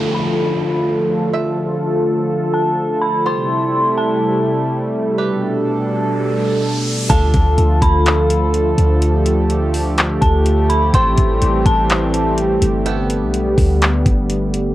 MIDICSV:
0, 0, Header, 1, 8, 480
1, 0, Start_track
1, 0, Tempo, 480000
1, 1339, Time_signature, 4, 2, 24, 8
1, 14747, End_track
2, 0, Start_track
2, 0, Title_t, "Synth bell"
2, 0, Program_c, 0, 98
2, 144, Note_on_c, 0, 83, 78
2, 821, Note_off_c, 0, 83, 0
2, 2537, Note_on_c, 0, 81, 71
2, 2989, Note_off_c, 0, 81, 0
2, 3015, Note_on_c, 0, 83, 76
2, 3245, Note_off_c, 0, 83, 0
2, 3265, Note_on_c, 0, 84, 99
2, 3942, Note_off_c, 0, 84, 0
2, 3975, Note_on_c, 0, 81, 80
2, 4657, Note_off_c, 0, 81, 0
2, 7098, Note_on_c, 0, 81, 107
2, 7778, Note_off_c, 0, 81, 0
2, 7822, Note_on_c, 0, 83, 80
2, 8500, Note_off_c, 0, 83, 0
2, 10214, Note_on_c, 0, 81, 75
2, 10668, Note_off_c, 0, 81, 0
2, 10696, Note_on_c, 0, 83, 78
2, 10926, Note_off_c, 0, 83, 0
2, 10946, Note_on_c, 0, 84, 98
2, 11622, Note_off_c, 0, 84, 0
2, 11659, Note_on_c, 0, 81, 86
2, 12339, Note_off_c, 0, 81, 0
2, 14747, End_track
3, 0, Start_track
3, 0, Title_t, "Five-string banjo"
3, 0, Program_c, 1, 105
3, 0, Note_on_c, 1, 57, 66
3, 0, Note_on_c, 1, 65, 64
3, 0, Note_on_c, 1, 74, 73
3, 1318, Note_off_c, 1, 74, 0
3, 1336, Note_on_c, 1, 76, 77
3, 3218, Note_off_c, 1, 65, 0
3, 3238, Note_off_c, 1, 76, 0
3, 3258, Note_on_c, 1, 67, 61
3, 3262, Note_on_c, 1, 72, 77
3, 5159, Note_off_c, 1, 67, 0
3, 5160, Note_off_c, 1, 72, 0
3, 5180, Note_on_c, 1, 67, 64
3, 5182, Note_on_c, 1, 71, 77
3, 7057, Note_off_c, 1, 57, 0
3, 7081, Note_off_c, 1, 67, 0
3, 7081, Note_off_c, 1, 71, 0
3, 7093, Note_on_c, 1, 69, 65
3, 7099, Note_on_c, 1, 77, 78
3, 7102, Note_on_c, 1, 62, 68
3, 10899, Note_off_c, 1, 69, 0
3, 10899, Note_off_c, 1, 77, 0
3, 10900, Note_off_c, 1, 62, 0
3, 10938, Note_on_c, 1, 60, 70
3, 10943, Note_on_c, 1, 69, 63
3, 10945, Note_on_c, 1, 79, 77
3, 12840, Note_off_c, 1, 60, 0
3, 12840, Note_off_c, 1, 79, 0
3, 12841, Note_off_c, 1, 69, 0
3, 12856, Note_on_c, 1, 69, 66
3, 12859, Note_on_c, 1, 59, 68
3, 12862, Note_on_c, 1, 79, 76
3, 14747, Note_off_c, 1, 59, 0
3, 14747, Note_off_c, 1, 69, 0
3, 14747, Note_off_c, 1, 79, 0
3, 14747, End_track
4, 0, Start_track
4, 0, Title_t, "Analog synth pad"
4, 0, Program_c, 2, 89
4, 0, Note_on_c, 2, 50, 75
4, 0, Note_on_c, 2, 53, 69
4, 0, Note_on_c, 2, 57, 70
4, 0, Note_on_c, 2, 65, 70
4, 0, Note_on_c, 2, 69, 88
4, 3220, Note_off_c, 2, 53, 0
4, 3220, Note_off_c, 2, 57, 0
4, 3221, Note_off_c, 2, 50, 0
4, 3221, Note_off_c, 2, 65, 0
4, 3259, Note_on_c, 2, 55, 70
4, 3260, Note_on_c, 2, 48, 80
4, 3260, Note_on_c, 2, 57, 70
4, 3260, Note_on_c, 2, 64, 74
4, 5139, Note_off_c, 2, 69, 0
4, 5160, Note_off_c, 2, 48, 0
4, 5160, Note_off_c, 2, 64, 0
4, 5179, Note_on_c, 2, 69, 83
4, 5180, Note_on_c, 2, 47, 77
4, 5180, Note_on_c, 2, 62, 72
4, 7061, Note_off_c, 2, 55, 0
4, 7061, Note_off_c, 2, 57, 0
4, 7080, Note_off_c, 2, 47, 0
4, 7080, Note_off_c, 2, 62, 0
4, 7080, Note_off_c, 2, 69, 0
4, 7098, Note_on_c, 2, 53, 74
4, 7098, Note_on_c, 2, 65, 72
4, 7098, Note_on_c, 2, 69, 83
4, 7099, Note_on_c, 2, 50, 77
4, 7099, Note_on_c, 2, 57, 71
4, 8999, Note_off_c, 2, 65, 0
4, 9017, Note_on_c, 2, 67, 71
4, 10900, Note_off_c, 2, 50, 0
4, 10900, Note_off_c, 2, 53, 0
4, 10900, Note_off_c, 2, 69, 0
4, 10937, Note_on_c, 2, 55, 67
4, 10938, Note_on_c, 2, 52, 76
4, 10938, Note_on_c, 2, 60, 74
4, 12839, Note_off_c, 2, 55, 0
4, 12839, Note_off_c, 2, 60, 0
4, 12840, Note_off_c, 2, 52, 0
4, 12859, Note_on_c, 2, 50, 79
4, 12860, Note_on_c, 2, 55, 72
4, 12860, Note_on_c, 2, 59, 70
4, 14738, Note_off_c, 2, 67, 0
4, 14739, Note_off_c, 2, 57, 0
4, 14747, Note_off_c, 2, 50, 0
4, 14747, Note_off_c, 2, 55, 0
4, 14747, Note_off_c, 2, 59, 0
4, 14747, End_track
5, 0, Start_track
5, 0, Title_t, "808-style bass"
5, 0, Program_c, 3, 38
5, 7099, Note_on_c, 3, 38, 108
5, 7330, Note_off_c, 3, 38, 0
5, 7341, Note_on_c, 3, 38, 103
5, 7570, Note_off_c, 3, 38, 0
5, 7580, Note_on_c, 3, 38, 110
5, 7810, Note_off_c, 3, 38, 0
5, 7818, Note_on_c, 3, 38, 99
5, 8740, Note_off_c, 3, 38, 0
5, 8778, Note_on_c, 3, 38, 102
5, 10178, Note_off_c, 3, 38, 0
5, 10219, Note_on_c, 3, 38, 106
5, 10910, Note_off_c, 3, 38, 0
5, 10939, Note_on_c, 3, 33, 106
5, 11170, Note_off_c, 3, 33, 0
5, 11180, Note_on_c, 3, 33, 104
5, 11410, Note_off_c, 3, 33, 0
5, 11419, Note_on_c, 3, 33, 106
5, 11650, Note_off_c, 3, 33, 0
5, 11656, Note_on_c, 3, 33, 101
5, 12579, Note_off_c, 3, 33, 0
5, 12618, Note_on_c, 3, 31, 106
5, 13218, Note_on_c, 3, 35, 98
5, 13233, Note_off_c, 3, 31, 0
5, 13560, Note_off_c, 3, 35, 0
5, 13577, Note_on_c, 3, 38, 99
5, 14039, Note_off_c, 3, 38, 0
5, 14059, Note_on_c, 3, 31, 106
5, 14747, Note_off_c, 3, 31, 0
5, 14747, End_track
6, 0, Start_track
6, 0, Title_t, "Downlifter"
6, 0, Program_c, 4, 103
6, 0, Note_on_c, 4, 60, 83
6, 3259, Note_off_c, 4, 60, 0
6, 14747, End_track
7, 0, Start_track
7, 0, Title_t, "Riser"
7, 0, Program_c, 5, 103
7, 5179, Note_on_c, 5, 60, 80
7, 7099, Note_off_c, 5, 60, 0
7, 14747, End_track
8, 0, Start_track
8, 0, Title_t, "Drums"
8, 7099, Note_on_c, 9, 42, 77
8, 7100, Note_on_c, 9, 36, 118
8, 7199, Note_off_c, 9, 42, 0
8, 7200, Note_off_c, 9, 36, 0
8, 7337, Note_on_c, 9, 42, 62
8, 7341, Note_on_c, 9, 36, 94
8, 7437, Note_off_c, 9, 42, 0
8, 7441, Note_off_c, 9, 36, 0
8, 7579, Note_on_c, 9, 42, 66
8, 7679, Note_off_c, 9, 42, 0
8, 7818, Note_on_c, 9, 36, 81
8, 7820, Note_on_c, 9, 42, 75
8, 7918, Note_off_c, 9, 36, 0
8, 7920, Note_off_c, 9, 42, 0
8, 8059, Note_on_c, 9, 42, 59
8, 8071, Note_on_c, 9, 39, 115
8, 8159, Note_off_c, 9, 42, 0
8, 8171, Note_off_c, 9, 39, 0
8, 8300, Note_on_c, 9, 42, 71
8, 8400, Note_off_c, 9, 42, 0
8, 8538, Note_on_c, 9, 42, 60
8, 8638, Note_off_c, 9, 42, 0
8, 8780, Note_on_c, 9, 42, 71
8, 8880, Note_off_c, 9, 42, 0
8, 9019, Note_on_c, 9, 42, 81
8, 9119, Note_off_c, 9, 42, 0
8, 9258, Note_on_c, 9, 42, 65
8, 9358, Note_off_c, 9, 42, 0
8, 9497, Note_on_c, 9, 42, 64
8, 9597, Note_off_c, 9, 42, 0
8, 9738, Note_on_c, 9, 46, 57
8, 9838, Note_off_c, 9, 46, 0
8, 9977, Note_on_c, 9, 42, 60
8, 9989, Note_on_c, 9, 39, 113
8, 10077, Note_off_c, 9, 42, 0
8, 10089, Note_off_c, 9, 39, 0
8, 10219, Note_on_c, 9, 36, 84
8, 10219, Note_on_c, 9, 42, 71
8, 10319, Note_off_c, 9, 36, 0
8, 10319, Note_off_c, 9, 42, 0
8, 10458, Note_on_c, 9, 42, 58
8, 10558, Note_off_c, 9, 42, 0
8, 10698, Note_on_c, 9, 42, 72
8, 10798, Note_off_c, 9, 42, 0
8, 10938, Note_on_c, 9, 42, 78
8, 10939, Note_on_c, 9, 36, 117
8, 11038, Note_off_c, 9, 42, 0
8, 11039, Note_off_c, 9, 36, 0
8, 11176, Note_on_c, 9, 42, 62
8, 11180, Note_on_c, 9, 36, 95
8, 11276, Note_off_c, 9, 42, 0
8, 11280, Note_off_c, 9, 36, 0
8, 11417, Note_on_c, 9, 42, 65
8, 11517, Note_off_c, 9, 42, 0
8, 11657, Note_on_c, 9, 36, 82
8, 11658, Note_on_c, 9, 42, 73
8, 11757, Note_off_c, 9, 36, 0
8, 11758, Note_off_c, 9, 42, 0
8, 11897, Note_on_c, 9, 42, 58
8, 11909, Note_on_c, 9, 39, 114
8, 11997, Note_off_c, 9, 42, 0
8, 12009, Note_off_c, 9, 39, 0
8, 12139, Note_on_c, 9, 42, 71
8, 12239, Note_off_c, 9, 42, 0
8, 12378, Note_on_c, 9, 42, 61
8, 12478, Note_off_c, 9, 42, 0
8, 12619, Note_on_c, 9, 42, 73
8, 12719, Note_off_c, 9, 42, 0
8, 12858, Note_on_c, 9, 42, 78
8, 12958, Note_off_c, 9, 42, 0
8, 13098, Note_on_c, 9, 42, 62
8, 13198, Note_off_c, 9, 42, 0
8, 13338, Note_on_c, 9, 42, 66
8, 13438, Note_off_c, 9, 42, 0
8, 13577, Note_on_c, 9, 36, 80
8, 13579, Note_on_c, 9, 46, 56
8, 13677, Note_off_c, 9, 36, 0
8, 13679, Note_off_c, 9, 46, 0
8, 13818, Note_on_c, 9, 42, 59
8, 13830, Note_on_c, 9, 39, 110
8, 13918, Note_off_c, 9, 42, 0
8, 13930, Note_off_c, 9, 39, 0
8, 14059, Note_on_c, 9, 36, 86
8, 14059, Note_on_c, 9, 42, 71
8, 14159, Note_off_c, 9, 36, 0
8, 14159, Note_off_c, 9, 42, 0
8, 14297, Note_on_c, 9, 42, 62
8, 14397, Note_off_c, 9, 42, 0
8, 14539, Note_on_c, 9, 42, 71
8, 14639, Note_off_c, 9, 42, 0
8, 14747, End_track
0, 0, End_of_file